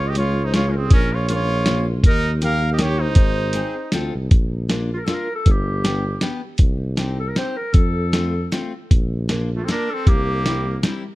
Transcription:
Already playing: C#2 F4
0.07 G4 D#5
0.15 G#3 C#4 F4 C#5, closed hi-hat
0.45 D#4 C5
0.54 G#3 C#4 F4 C#5, snare, closed hi-hat
0.69 C#4 A#4
0.77 C4 G#4
0.91 A#1 C#4 A#4, kick, closed hi-hat
1.13 F4 C#5
1.29 A#3 C#4 F4, closed hi-hat
1.35 C#5
1.66 A#3 C#4 F4, snare, closed hi-hat
2.04 D#2 D#4 A#4, kick, closed hi-hat
2.41 A#3 D#4 G4 A#4 F5, closed hi-hat
2.73 G4 D#5
2.78 A#3 D#4 G4, snare, closed hi-hat
2.82 C#5
3.01 D#4 C5
3.15 G#1, kick, closed hi-hat
3.53 C4 D#4 G#4, closed hi-hat
3.92 D2 C4 F4 A4, snare, closed hi-hat
4.15 C2
4.31 A#1, kick, closed hi-hat
4.70 A#3 D4 F4, snare, closed hi-hat
4.94 F4 A#4
5.05 A#3 D4 F4 A4, snare, closed hi-hat
5.14 A#4
5.35 A4
5.46 G1, kick, closed hi-hat
5.51 G4
5.84 B3 D4 G4, snare, closed hi-hat
6.21 B3 D4 G4, snare, closed hi-hat
6.58 C2, kick, closed hi-hat
6.97 C4 D#4 G4, snare, closed hi-hat
7.20 A4
7.29 A#4
7.36 C4 D#4 G4 C5, snare, closed hi-hat
7.57 A#4
7.74 F2 A4, kick, closed hi-hat
8.13 A3 C4 F4, snare, closed hi-hat
8.52 A3 C4 F4, snare, closed hi-hat
8.91 A#1, kick, closed hi-hat
9.29 A#3 D4 F4, snare, closed hi-hat
9.56 A3 F4
9.64 A#3 C4 A4
9.69 D4 F4 A#4, snare, closed hi-hat
9.90 C4 A4
10.07 C2 A#3 G4, kick, closed hi-hat
10.46 G3 C4 E4, snare, closed hi-hat
10.83 G3 C4 E4, snare, closed hi-hat

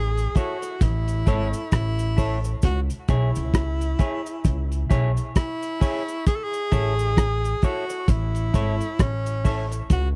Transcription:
Already playing: A1 G#4
0.17 closed hi-hat, cabasa
0.35 E4 F#4 A4 C#5, kick, closed hi-hat, cabasa
0.62 muted clean electric guitar stroke, closed hi-hat, cabasa
0.81 A1 E4, kick, closed hi-hat, cabasa
1.08 closed hi-hat, cabasa
1.26 G#1 E4 A4 C#5, kick, closed hi-hat, cabasa
1.53 closed hi-hat, cabasa
1.72 A1 E4, kick, cross-stick, closed hi-hat, cabasa
1.99 closed hi-hat, cabasa
2.17 E4 A4 C#5, kick, open hi-hat, cabasa
2.44 muted clean electric guitar stroke, closed hi-hat, cabasa
2.62 C#2 F#4, kick, closed hi-hat, cabasa
2.90 closed hi-hat, cabasa
3.08 B1 E4 G#4 C#5, kick, closed hi-hat, cabasa
3.35 C#2, closed hi-hat, cabasa
3.54 kick, cross-stick, closed hi-hat, cabasa
3.81 closed hi-hat, cabasa
3.99 E4 G#4 C#5, kick, closed hi-hat, cabasa
4.26 closed hi-hat, cabasa
4.45 C#2, kick, closed hi-hat, cabasa
4.72 closed hi-hat, cabasa
4.90 B1 E4 G#4 C#5, kick, closed hi-hat, cabasa
5.17 closed hi-hat, cabasa
5.36 E4, kick, cross-stick, closed hi-hat, cabasa
5.63 closed hi-hat, cabasa
5.80 E4 G#4 C#5, kick, open hi-hat, cabasa
6.08 closed hi-hat, cabasa
6.27 G#4, kick, closed hi-hat, cabasa
6.36 A4
6.44 G#4
6.53 closed hi-hat, cabasa
6.72 A1 E4 A4 C#5, kick, closed hi-hat, cabasa
6.99 closed hi-hat, cabasa
7.17 kick, cross-stick, closed hi-hat, cabasa
7.44 closed hi-hat, cabasa
7.62 E4 F#4 A4 C#5, kick, closed hi-hat, cabasa
7.90 muted clean electric guitar stroke, closed hi-hat, cabasa
8.08 A1 E4, kick, closed hi-hat, cabasa
8.35 closed hi-hat, cabasa
8.54 G#1 E4 A4 C#5, kick, closed hi-hat, cabasa
8.81 closed hi-hat, cabasa
8.99 A1 C#4, kick, cross-stick, closed hi-hat, cabasa
9.26 closed hi-hat, cabasa
9.44 E4 A4 C#5, kick, open hi-hat, cabasa
9.72 muted clean electric guitar stroke, closed hi-hat, cabasa
9.90 C#2 F#4, kick, closed hi-hat, cabasa

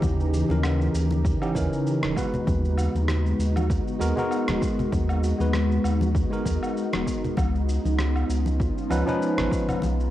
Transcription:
Already playing: C#3 E3 C#4 D#4 G4 A#5
0.02 D#2, kick, high conga, shaker
0.20 shaker
0.34 shaker
0.48 D#2 E3 C#4 D#4 A#4, high conga, shaker
0.64 cross-stick, low woodblock, shaker
0.82 shaker
0.94 D#2, shaker
1.11 high conga, shaker
1.25 kick, shaker
1.41 E3 C#4 D#4 G4, low woodblock, shaker
1.55 D#2 E3 C#4 D#4 A#4, kick, high conga, shaker
1.73 shaker
1.87 shaker
2.03 D#1, cross-stick, high conga, shaker
2.15 G#3 B3 D#4 F#4 B4, kick, low woodblock, shaker
2.34 low conga, shaker
2.47 D#2, kick, high conga, shaker
2.65 shaker
2.78 low woodblock, shaker
2.95 D#2, high conga, shaker
3.08 cross-stick, shaker
3.26 shaker
3.39 D#2, shaker
3.56 high conga, low woodblock, shaker
3.70 kick, shaker
3.88 shaker
3.99 D#2 G#3 B3 F#4 A#4, high conga, shaker
4.16 G#3 B3 F#4 A#4, low conga, shaker
4.31 low woodblock, shaker
4.48 D#1, cross-stick, high conga, low conga, shaker
4.62 kick, shaker
4.79 low conga, shaker
4.92 D#2, kick, high conga, shaker
5.09 low woodblock, shaker
5.24 shaker
5.38 D#2 G#3 B3 F#4 B4, high conga, shaker
5.53 cross-stick, shaker
5.72 shaker
5.84 D#2, low woodblock, shaker
6.01 high conga, shaker
6.15 kick, shaker
6.30 G#3 B3 F#4 A#4, shaker
6.45 D#2, kick, high conga, shaker
6.63 low woodblock, shaker
6.77 shaker
6.93 D#1, cross-stick, high conga, shaker
7.07 kick, shaker
7.24 low conga, shaker
7.37 C#2 C#4 F4, kick, high conga, low woodblock, shaker
7.55 shaker
7.69 shaker
7.85 C#2, high conga, shaker
7.98 cross-stick, shaker
8.15 low woodblock, shaker
8.29 C#2, shaker
8.46 high conga, shaker
8.60 kick, shaker
8.78 shaker
8.90 C#2 F3 C#4 D#4 B4, high conga, low woodblock, shaker
9.06 F3 C#4 D#4 B4, low conga, shaker
9.22 shaker
9.38 G#1, cross-stick, high conga, low conga, shaker
9.52 kick, shaker
9.69 low conga, low woodblock, shaker
9.82 B1 F#3 A3 F#4, high conga, shaker
10.00 shaker

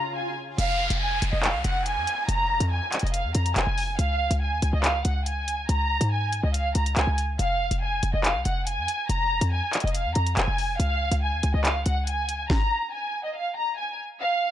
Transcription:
Already playing: C#3 C#4 F4 G#4 A#5, swell
0.16 G#5
0.58 F1 F5, closed hi-hat, downlifter
0.90 F1, closed hi-hat
1.01 G#5
1.22 F1, closed hi-hat
1.33 F1 D#5
1.43 F5, clap, closed hi-hat
1.54 C2
1.64 F1 F#5, closed hi-hat
1.86 G#5, closed hi-hat
1.97 F2
2.07 closed hi-hat
2.28 F1 A#5, closed hi-hat
2.60 F2, closed hi-hat
2.71 G#5
2.92 clap, closed hi-hat
2.99 F1 D#5, closed hi-hat
3.07 closed hi-hat
3.14 F5, closed hi-hat
3.24 F2
3.35 F2 A#5, closed hi-hat
3.46 closed hi-hat
3.56 F1 G#5, clap, closed hi-hat
3.67 F1
3.78 open hi-hat
3.99 C#2 F5, closed hi-hat
4.31 C#2, closed hi-hat
4.41 G#5
4.52 D#2
4.62 C#2, closed hi-hat
4.73 C#2 D#5
4.84 F5, clap, closed hi-hat
5.05 C#2 F#5, closed hi-hat
5.26 G#5, closed hi-hat
5.48 closed hi-hat
5.69 C#2 A#5, closed hi-hat
6.01 G#2, closed hi-hat
6.12 G#5
6.33 closed hi-hat
6.43 C#2 D#5
6.54 F5, closed hi-hat
6.75 C#2 A#5, closed hi-hat
6.86 closed hi-hat
6.96 C#2 G#5, clap, closed hi-hat
7.07 C#2
7.18 closed hi-hat
7.39 F1 F5, closed hi-hat
7.71 F1, closed hi-hat
7.82 G#5
8.03 F1, closed hi-hat
8.14 F1 D#5
8.24 F5, clap, closed hi-hat
8.35 C2
8.45 F1 F#5, closed hi-hat
8.67 G#5, closed hi-hat
8.78 F2
8.88 closed hi-hat
9.09 F1 A#5, closed hi-hat
9.41 F2, closed hi-hat
9.52 G#5
9.73 clap, closed hi-hat
9.80 F1 D#5, closed hi-hat
9.87 closed hi-hat
9.95 F5, closed hi-hat
10.05 F2
10.15 F2 A#5, closed hi-hat
10.27 closed hi-hat
10.37 F1 G#5, clap, closed hi-hat
10.48 F1
10.58 open hi-hat
10.80 C#2 F5, closed hi-hat
11.12 C#2, closed hi-hat
11.22 G#5
11.33 D#2
11.43 C#2, closed hi-hat
11.54 C#2 D#5
11.65 F5, clap, closed hi-hat
11.86 C#2 F#5, closed hi-hat
12.07 G#5, closed hi-hat
12.29 closed hi-hat
12.50 A#5, kick, snare
12.93 G#5
13.24 D#5
13.35 F5
13.56 A#5
13.78 G#5
14.20 F5

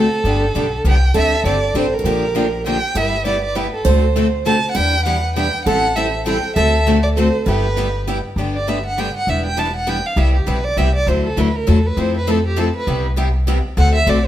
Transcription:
Already playing: A4
0.24 G1 D3 G3 B3 D4 G4
0.55 B1 D3 G3 B3 D4 G4
0.84 C2 D3 G3 B3 D4 G4
0.89 G5
1.14 D2 D3 G3 C4 D4 G4 A4 E5
1.44 G1 D3 G3 C4 D4 G4 D5
1.74 A1 D3 G3 C4 D4 G4 C5
1.94 A#4
1.99 F#4
2.04 A#1 D3 F3 A#3 D4 G4
2.35 D3 F3 A#3 D4 G4
2.66 D3 F3 A#3 D4 G4 G5
2.95 G1 G3 B3 E4 G4 B4 E5
3.25 G3 B3 E4 G4 D5
3.44 D5
3.55 G3 B3 E4 G4 B4
3.74 A4
3.85 D2 D3 A3 C4 F#4 A4 C5
4.16 D3 A3 C4 F#4 A4
4.46 D3 A3 C4 F#4 A4 A5
4.71 F#5
4.75 E2 E3 G3 B3 D4 E4 G4 B4 G5
5.05 E3 G3 B3 D4 E4 G4 B4 F#5
5.36 E3 G3 B3 D4 E4 G4 B4 G5
5.65 A1 E3 G3 C4 E4 A4 F#5
5.96 E3 G3 C4 E4 A4 E5
6.26 E3 G3 C4 E4 A4 G5
6.56 D2 D3 A3 C4 F#4 A4 E5
6.87 D3 A3 C4 F#4 A4
7.03 D5
7.17 D3 A3 C4 F#4 A4 C5
7.46 G1 G3 B3 E4 G4 B4
7.77 G3 B3 E4 G4
8.08 G3 B3 E4 G4
8.36 G1 D3 G3 B3 D4 G4
8.56 D5
8.67 D3 G3 B3 D4 G4 E5
8.86 F#5
8.98 D3 G3 B3 D4 G4 G5
9.17 F#5
9.27 E1 E3 G3 B3 D4 E4 G4 B4 E5
9.46 G5
9.57 E3 G3 B3 D4 E4 G4 B4 A5
9.76 F#5
9.87 E3 G3 B3 D4 E4 G4 B4 G5
10.06 F5
10.16 C2 C3 G3 B3 E4 G4 E5
10.35 G4
10.47 B1 C3 G3 B3 E4 G4 B4
10.65 D5
10.77 C2 C3 G3 B3 E4 G4 E5
10.95 D5
11.06 D2 D3 F#3 A3 E4 F#4 A4 C5
11.27 A4
11.37 D2 D3 F#3 A3 E4 F#4 A4 B4
11.56 A#4
11.67 E2 D3 F#3 A3 E4 F#4 A4
11.86 B4
11.97 F2 F3 A3 C4 E4 A4 C5
12.17 B4
12.27 F3 A3 C4 E4 A4
12.47 G4
12.56 F3 A3 C4 E4 A4
12.76 B4
12.87 C2 C3 G3 B3 E4 G4
13.16 C3 G3 B3 E4 G4
13.47 C3 G3 B3 E4 G4
13.77 D2 D3 A3 C4 F#4 A4 F#5
13.95 E5
14.07 B1 D3 A3 C4 F#4 A4 D5

